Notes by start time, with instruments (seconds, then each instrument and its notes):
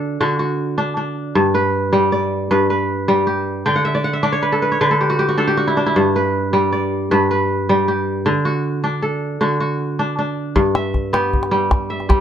Already playing: kora D3 D4 F#4 A4
0.20 kora D3 F#4
0.39 kora F#4
0.78 kora D4
0.97 kora D4
1.35 kora G2
1.54 kora B4
1.93 kora G3
2.12 kora D5
2.51 kora G2 B4
2.70 kora B4
3.08 kora G3
3.27 kora G4
3.66 kora D3 G5
3.76 kora F#5
3.85 kora E5
3.95 kora D5
4.04 kora F#5
4.13 kora E5
4.23 kora D4 D5
4.32 kora C#5
4.42 kora B4
4.52 kora A4
4.62 kora B4
4.72 kora C#5
4.81 kora D3 B4
4.91 kora A4
5.01 kora G4
5.10 kora F#4
5.19 kora G4
5.29 kora F#4
5.38 kora D4 A4
5.47 kora G4
5.57 kora F#4
5.67 kora E4
5.77 kora D4
5.86 kora E4
5.96 kora G2
6.16 kora B4
6.53 kora G3
6.72 kora D5
7.11 kora G2 B4
7.31 kora B4
7.69 kora G3
7.88 kora G4
8.26 kora D3
8.45 kora F#4
8.84 kora D4
9.02 kora A4
9.41 kora D3 F#4
9.60 kora F#4
9.99 kora D4
10.19 kora D4
10.56 kora G2, calabash thump
10.75 kora E5, calabash click
10.94 calabash thump, calabash click
11.13 kora B3 G4, calabash click
11.33 calabash thump
11.43 calabash click
11.51 kora G3
11.71 calabash thump, calabash click
11.90 kora E5
12.00 calabash click
12.09 kora G3, calabash thump, calabash click